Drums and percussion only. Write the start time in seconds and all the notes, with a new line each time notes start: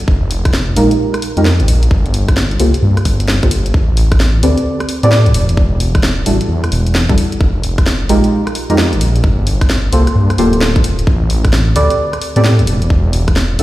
0.08 kick
0.31 open hi-hat
0.45 kick, cross-stick, closed hi-hat
0.54 snare
0.76 open hi-hat
0.91 closed hi-hat
1.14 cross-stick, closed hi-hat
1.22 open hi-hat
1.37 closed hi-hat
1.45 snare
1.60 closed hi-hat
1.68 open hi-hat
1.83 closed hi-hat
1.91 kick
2.06 closed hi-hat
2.14 open hi-hat
2.29 kick, cross-stick, closed hi-hat
2.37 snare
2.51 closed hi-hat
2.60 open hi-hat
2.74 closed hi-hat
2.97 cross-stick, closed hi-hat
3.05 kick, open hi-hat
3.20 closed hi-hat
3.28 snare
3.43 kick, closed hi-hat
3.51 open hi-hat
3.66 closed hi-hat
3.74 kick
3.97 open hi-hat
4.12 kick, cross-stick, closed hi-hat
4.20 snare
4.43 open hi-hat
4.58 closed hi-hat
4.80 cross-stick, closed hi-hat
4.89 open hi-hat
5.03 closed hi-hat
5.12 snare
5.26 closed hi-hat
5.34 open hi-hat
5.49 closed hi-hat
5.57 kick
5.80 open hi-hat
5.95 kick, cross-stick, closed hi-hat
6.03 snare
6.26 open hi-hat
6.41 closed hi-hat
6.64 cross-stick, closed hi-hat
6.72 open hi-hat
6.87 closed hi-hat
6.95 snare
7.09 kick, closed hi-hat
7.18 open hi-hat
7.32 closed hi-hat
7.41 kick
7.64 open hi-hat
7.78 kick, cross-stick, closed hi-hat
7.86 snare
8.09 open hi-hat
8.24 closed hi-hat
8.47 cross-stick, closed hi-hat
8.55 open hi-hat
8.70 closed hi-hat
8.78 snare
8.93 closed hi-hat
9.01 open hi-hat
9.16 closed hi-hat
9.24 kick
9.47 open hi-hat
9.61 kick, cross-stick, closed hi-hat
9.70 snare
9.93 open hi-hat
10.07 cross-stick, closed hi-hat
10.30 cross-stick, closed hi-hat
10.38 open hi-hat
10.53 closed hi-hat
10.61 snare
10.76 kick, closed hi-hat
10.84 open hi-hat
10.99 closed hi-hat
11.07 kick
11.30 open hi-hat
11.45 kick, cross-stick, closed hi-hat
11.53 snare
11.76 open hi-hat
11.90 closed hi-hat
12.13 cross-stick, closed hi-hat
12.22 open hi-hat
12.36 closed hi-hat
12.44 snare
12.59 closed hi-hat
12.67 open hi-hat
12.82 closed hi-hat
12.90 kick
13.13 open hi-hat
13.28 kick, cross-stick, closed hi-hat
13.36 snare
13.59 open hi-hat